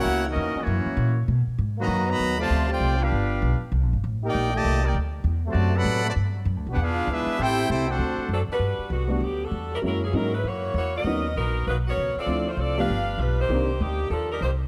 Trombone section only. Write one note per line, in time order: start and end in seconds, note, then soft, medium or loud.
0.00 0.24 A#3 loud
0.00 0.24 C#4 loud
0.00 0.24 F#4 loud
0.27 0.56 E3 medium
0.27 0.56 A#3 medium
0.27 0.56 D#4 medium
0.57 1.18 E3 medium
0.57 1.17 A#3 medium
0.57 1.17 C#4 medium
1.78 2.06 D#3 loud
1.78 2.05 F#3 loud
1.78 2.06 A#3 loud
2.06 2.38 D#3 loud
2.06 2.38 F#3 loud
2.06 2.38 B3 loud
2.37 2.67 C3 medium
2.37 2.66 F3 loud
2.37 2.66 A3 medium
2.67 2.99 A3 medium
2.67 2.99 C4 medium
2.67 2.99 G4 medium
2.97 3.59 B3 medium
2.97 3.59 D4 medium
2.97 3.59 F4 medium
4.24 4.51 A#3 medium
4.24 4.50 D#4 medium
4.24 4.51 G4 medium
4.52 4.83 A#2 loud
4.52 4.83 D#3 loud
4.52 4.82 A3 loud
4.82 4.93 A#3 medium
4.82 4.93 D#4 medium
4.82 4.93 G4 medium
5.45 5.73 C3 loud
5.45 5.72 F#3 medium
5.45 5.73 A3 medium
5.75 6.03 C3 loud
5.75 6.02 F#3 loud
5.75 6.05 B3 loud
6.03 6.09 C3 medium
6.03 6.09 F#3 medium
6.03 6.10 A3 medium
6.70 6.78 B3 medium
6.70 6.78 D4 medium
6.70 6.78 F#4 medium
6.80 7.09 B3 medium
6.80 7.09 D4 medium
6.80 7.09 F4 medium
7.10 7.39 G#3 medium
7.10 7.39 B3 medium
7.10 7.38 E4 medium
7.39 7.67 C4 loud
7.39 7.68 E4 loud
7.39 7.68 G4 loud
7.69 7.86 C4 medium
7.69 7.87 E4 medium
7.69 7.87 G4 medium
7.88 8.30 A3 medium
7.88 8.30 C4 medium
7.88 8.30 F#4 medium